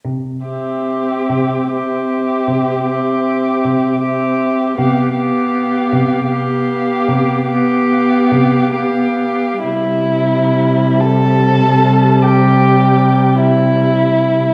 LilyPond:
<<
  \new Staff \with { instrumentName = "Violin" } { \time 12/8 \key c \major \tempo 4. = 50 r8 e''4. e''4. e''4. e''4 | f''8 f''4. f''4. f''4. f''4 | e''4. a''4. g''4. e''4. | }
  \new Staff \with { instrumentName = "Violin" } { \time 12/8 \key c \major r8 g'4. g'4. g'4. g'4 | g'8 g'4. g'4. g'4. g'4 | e'4. a'4. g'4. e'4. | }
  \new Staff \with { instrumentName = "Viola" } { \time 12/8 \key c \major r8 c'4. c'4. c'4. c'4 | b8 b4. b4. b4. b4 | g1. | }
  \new Staff \with { instrumentName = "Cello" } { \clef bass \time 12/8 \key c \major c4. c4. c4. c4. | c4. c4. c4. c4. | c1. | }
>>